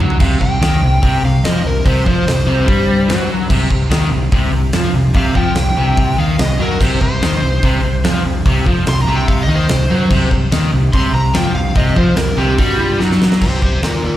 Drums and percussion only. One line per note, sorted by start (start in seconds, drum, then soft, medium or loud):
0.00 mid tom medium
0.10 floor tom medium
0.20 kick loud
0.20 crash loud
0.41 kick medium
0.62 snare loud
0.62 open hi-hat medium
0.72 snare soft
1.03 kick loud
1.03 open hi-hat medium
1.45 snare loud
1.45 open hi-hat medium
1.85 kick loud
1.85 open hi-hat medium
2.06 kick medium
2.28 snare loud
2.28 open hi-hat medium
2.39 snare soft
2.68 kick loud
2.68 open hi-hat medium
3.09 snare loud
3.09 open hi-hat medium
3.50 kick loud
3.50 crash loud
3.70 kick loud
3.91 snare loud
3.91 open hi-hat medium
4.02 snare soft
4.32 kick loud
4.32 open hi-hat medium
4.73 snare loud
4.73 open hi-hat medium
5.14 kick loud
5.14 open hi-hat medium
5.35 kick medium
5.55 snare loud
5.55 open hi-hat medium
5.97 kick loud
5.97 open hi-hat medium
6.39 snare loud
6.39 open hi-hat medium
6.81 kick loud
6.81 crash loud
7.01 kick medium
7.22 snare loud
7.22 open hi-hat medium
7.63 kick loud
7.63 open hi-hat medium
8.04 snare loud
8.04 open hi-hat medium
8.46 kick loud
8.46 open hi-hat medium
8.66 kick medium
8.86 snare loud
8.86 open hi-hat medium
8.98 snare soft
9.28 kick loud
9.28 open hi-hat medium
9.69 snare loud
9.69 open hi-hat medium
10.10 kick loud
10.10 crash loud
10.31 kick medium
10.52 snare loud
10.52 open hi-hat medium
10.93 kick loud
10.93 open hi-hat medium
11.34 snare loud
11.34 open hi-hat medium
11.75 kick loud
11.75 open hi-hat medium
11.96 kick loud
12.16 snare loud
12.16 open hi-hat medium
12.58 kick loud
12.58 open hi-hat medium
13.01 snare medium
13.11 snare medium
13.22 snare loud
13.32 snare loud
13.41 kick loud
13.41 crash loud
13.62 kick medium
13.83 snare medium
13.83 open hi-hat soft